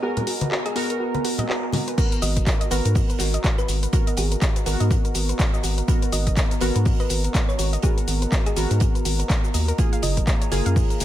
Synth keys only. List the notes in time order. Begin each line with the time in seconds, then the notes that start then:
0.02 B3 F#4 A#4
0.75 B3 F#4 A#4
1.98 B3 F#4 A#4
2.71 B3 F#4 A#4
3.93 B3 F#4 A#4
4.66 B3 F#4 A#4
5.88 B3 F#4 A#4
6.61 B3 F#4 A#4
7.83 B3 F#4 A#4
8.56 B3 F#4 A#4
9.78 A#3 F4 G#4
10.51 A#3 F4 G#4